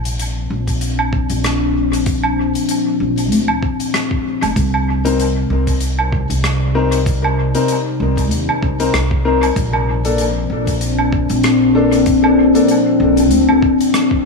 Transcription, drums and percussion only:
0.05 closed hi-hat
0.19 closed hi-hat
0.68 kick, closed hi-hat
0.81 closed hi-hat
0.99 low woodblock
1.13 kick
1.30 closed hi-hat
1.44 cross-stick, closed hi-hat
1.93 closed hi-hat
2.06 kick, closed hi-hat
2.23 low woodblock
2.55 closed hi-hat
2.69 closed hi-hat
3.18 closed hi-hat
3.32 closed hi-hat
3.48 low woodblock
3.63 kick
3.80 closed hi-hat
3.94 cross-stick, closed hi-hat
4.11 kick
4.42 closed hi-hat, low woodblock
4.56 kick, closed hi-hat
4.74 low woodblock
5.05 closed hi-hat
5.20 closed hi-hat
5.67 kick, closed hi-hat
5.80 closed hi-hat
5.99 low woodblock
6.12 kick
6.30 closed hi-hat
6.44 cross-stick, closed hi-hat
6.92 closed hi-hat
7.06 kick, closed hi-hat
7.24 low woodblock
7.55 closed hi-hat
7.68 closed hi-hat
8.17 kick, closed hi-hat
8.31 closed hi-hat
8.49 low woodblock
8.63 kick
8.80 closed hi-hat
8.94 cross-stick, closed hi-hat
9.11 kick
9.43 closed hi-hat, low woodblock
9.56 kick, closed hi-hat
9.73 low woodblock
10.05 closed hi-hat
10.18 closed hi-hat
10.67 kick, closed hi-hat
10.81 closed hi-hat
10.99 low woodblock
11.13 kick
11.29 closed hi-hat
11.43 cross-stick, closed hi-hat
11.92 closed hi-hat
12.06 kick, closed hi-hat
12.24 low woodblock
12.55 closed hi-hat
12.68 closed hi-hat
13.17 closed hi-hat
13.31 closed hi-hat
13.49 low woodblock
13.62 kick
13.81 closed hi-hat
13.94 cross-stick, closed hi-hat
14.11 kick

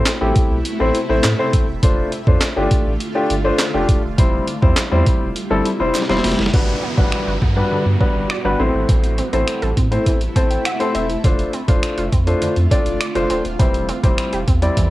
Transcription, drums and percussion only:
0.05 snare, clap, closed hi-hat
0.36 kick, closed hi-hat
0.65 closed hi-hat
0.95 closed hi-hat
1.23 snare, clap, closed hi-hat
1.53 kick, closed hi-hat
1.83 kick, closed hi-hat
2.12 closed hi-hat
2.27 kick
2.41 snare, clap, closed hi-hat
2.71 kick, closed hi-hat
3.00 closed hi-hat
3.30 closed hi-hat
3.58 snare, clap, closed hi-hat
3.89 kick, closed hi-hat
4.18 kick, closed hi-hat
4.47 closed hi-hat
4.62 kick
4.76 snare, clap, closed hi-hat
5.06 kick, closed hi-hat
5.36 closed hi-hat
5.65 closed hi-hat
5.95 snare, clap, closed hi-hat
6.02 snare
6.10 snare
6.17 snare
6.24 snare, open hi-hat
6.32 snare
6.39 snare
6.46 snare
6.54 kick, crash
6.98 kick
7.12 finger snap
7.42 kick
8.01 kick
8.30 finger snap
8.89 kick, closed hi-hat
9.04 closed hi-hat
9.18 closed hi-hat
9.33 closed hi-hat
9.48 finger snap, closed hi-hat
9.62 closed hi-hat
9.77 kick, closed hi-hat
9.92 closed hi-hat
10.06 kick, closed hi-hat
10.21 closed hi-hat
10.36 kick, closed hi-hat
10.51 closed hi-hat
10.65 finger snap, closed hi-hat
10.80 closed hi-hat
10.95 closed hi-hat
11.10 closed hi-hat
11.24 kick, closed hi-hat
11.39 closed hi-hat
11.53 closed hi-hat
11.68 kick, closed hi-hat
11.83 finger snap, closed hi-hat
11.98 closed hi-hat
12.12 kick, closed hi-hat
12.27 closed hi-hat
12.42 closed hi-hat
12.56 closed hi-hat
12.71 kick, closed hi-hat
12.86 closed hi-hat
13.01 finger snap, closed hi-hat
13.15 closed hi-hat
13.30 closed hi-hat
13.45 closed hi-hat
13.60 kick, closed hi-hat
13.74 closed hi-hat
13.89 closed hi-hat
14.04 kick, closed hi-hat
14.18 finger snap, closed hi-hat
14.33 closed hi-hat
14.48 kick, closed hi-hat
14.62 closed hi-hat
14.77 kick, closed hi-hat

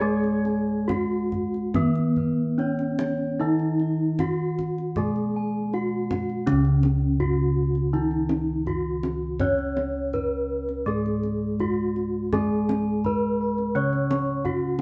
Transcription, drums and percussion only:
0.24 kendang slap
0.45 kendang slap
0.89 kendang slap, kendang high, kendang low
1.32 kendang slap, kendang low
1.54 kendang slap
1.74 kendang high, kendang low
1.95 kendang slap
2.16 kendang low
2.59 kendang slap
2.79 kendang slap
2.99 kendang slap, kendang high
3.59 kendang slap
3.80 kendang slap
4.19 kendang slap, kendang high, kendang low
4.59 kendang slap, kendang low
4.78 kendang slap
4.96 kendang low
5.16 kendang slap
5.73 kendang slap
6.11 kendang slap, kendang high, kendang low
6.29 kendang slap
6.47 kendang high, kendang low
6.65 kendang slap
6.83 kendang slap, kendang high
7.20 kendang slap, kendang low
7.75 kendang slap
7.94 kendang slap
8.11 kendang slap
8.29 kendang slap, kendang high
8.67 kendang low
9.03 kendang slap, kendang high
9.40 kendang high, kendang low
9.59 kendang slap
9.77 kendang slap, kendang high
10.13 kendang slap, kendang low
10.69 kendang slap
10.88 kendang slap
11.06 kendang slap
11.23 kendang slap
11.60 kendang low
11.96 kendang slap
12.33 kendang high, kendang low
12.69 kendang slap, kendang high
13.04 kendang slap, kendang low
13.58 kendang slap
13.76 kendang slap
13.93 kendang slap
14.11 kendang slap, kendang high
14.45 kendang low

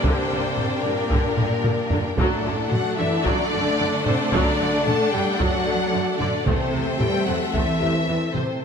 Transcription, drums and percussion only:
0.04 taiko
0.57 taiko low-mid
1.11 taiko
1.37 taiko low-mid
1.64 taiko low-mid
1.91 taiko low
2.18 taiko
2.72 taiko low-mid
3.26 taiko
4.06 taiko low-mid
4.33 taiko
4.87 taiko low-mid
5.40 taiko
6.20 taiko low-mid
6.47 taiko
7.00 taiko low-mid
7.54 taiko
8.34 taiko low-mid

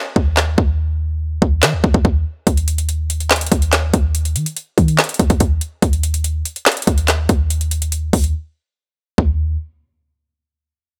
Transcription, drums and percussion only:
0.16 kick
0.37 snare, clap
0.58 kick
1.42 kick
1.63 snare, clap
1.84 kick
1.94 kick
2.05 kick
2.47 kick, closed hi-hat
2.57 closed hi-hat
2.68 closed hi-hat
2.78 closed hi-hat
2.89 closed hi-hat
3.10 closed hi-hat
3.20 closed hi-hat
3.31 snare, clap, closed hi-hat
3.36 closed hi-hat
3.41 closed hi-hat
3.47 closed hi-hat
3.52 kick, closed hi-hat
3.62 closed hi-hat
3.73 snare, clap, closed hi-hat
3.94 kick, closed hi-hat
4.15 closed hi-hat
4.25 closed hi-hat
4.36 closed hi-hat
4.46 closed hi-hat
4.57 closed hi-hat
4.78 kick, closed hi-hat
4.88 closed hi-hat
4.99 snare, clap, closed hi-hat
5.04 closed hi-hat
5.09 closed hi-hat
5.14 closed hi-hat
5.19 kick, closed hi-hat
5.30 kick, closed hi-hat
5.40 kick, closed hi-hat
5.61 closed hi-hat
5.82 kick, closed hi-hat
5.93 closed hi-hat
6.03 closed hi-hat
6.14 closed hi-hat
6.24 closed hi-hat
6.45 closed hi-hat
6.56 closed hi-hat
6.66 snare, clap, closed hi-hat
6.72 closed hi-hat
6.77 closed hi-hat
6.82 closed hi-hat
6.87 kick, closed hi-hat
6.98 closed hi-hat
7.08 snare, clap, closed hi-hat
7.29 kick, closed hi-hat
7.50 closed hi-hat
7.61 closed hi-hat
7.71 closed hi-hat
7.82 closed hi-hat
7.92 closed hi-hat
8.13 kick, open hi-hat
8.24 closed hi-hat
9.18 kick, floor tom

